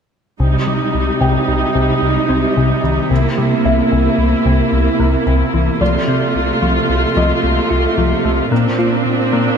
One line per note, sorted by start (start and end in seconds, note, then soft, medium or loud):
0.40 0.56 C2 medium
0.40 0.56 C3 medium
0.40 5.77 C3 soft
0.40 3.07 G3 soft
0.40 3.07 D#4 soft
0.67 0.83 C3 soft
0.67 0.83 G3 soft
0.94 1.10 C2 soft
1.21 1.37 C2 medium
1.21 1.37 C3 medium
1.21 2.79 G5 soft
1.48 1.64 C2 medium
1.75 1.91 C2 medium
1.75 1.91 C3 medium
2.02 2.18 C2 medium
2.29 2.45 C2 soft
2.29 2.45 C4 medium
2.56 2.73 C2 medium
2.56 2.73 C3 medium
2.84 3.00 C2 medium
2.84 3.00 D#3 medium
3.10 3.26 C2 medium
3.10 3.27 C3 medium
3.10 5.77 A#3 soft
3.10 5.77 E4 soft
3.38 3.54 C3 soft
3.38 3.54 G3 soft
3.65 3.81 C2 medium
3.65 5.23 E5 soft
3.92 4.08 C2 medium
3.92 4.08 C3 medium
4.18 4.34 C2 medium
4.45 4.61 C2 medium
4.45 4.62 C3 medium
4.72 4.88 C2 medium
4.99 5.16 C2 medium
4.99 5.16 A#3 medium
5.26 5.42 C2 medium
5.26 5.43 C3 medium
5.53 5.70 C2 medium
5.53 5.70 E3 medium
5.81 5.97 C2 medium
5.81 8.47 C3 soft
5.81 5.97 F3 medium
5.81 8.47 A3 soft
5.81 8.47 F4 soft
5.81 7.39 D5 soft
6.08 6.24 C3 soft
6.08 6.24 C4 soft
6.35 6.51 C2 soft
6.62 6.78 C2 medium
6.62 6.78 F3 medium
6.89 7.05 C2 medium
7.16 7.32 C2 medium
7.16 7.33 F3 medium
7.16 8.74 D#5 soft
7.43 7.59 C2 soft
7.70 7.86 C2 medium
7.70 7.86 F4 medium
7.97 8.13 C2 medium
7.97 8.14 F3 medium
8.24 8.40 C2 medium
8.24 8.41 A3 medium
8.51 8.67 A#2 medium
8.51 9.57 A#2 medium
8.51 8.68 A#3 medium
8.51 9.57 C4 soft
8.51 9.57 D4 medium
8.78 8.94 A#3 soft
8.78 8.95 F4 soft
9.05 9.21 A#2 medium
9.32 9.49 A#2 medium
9.32 9.49 A#3 medium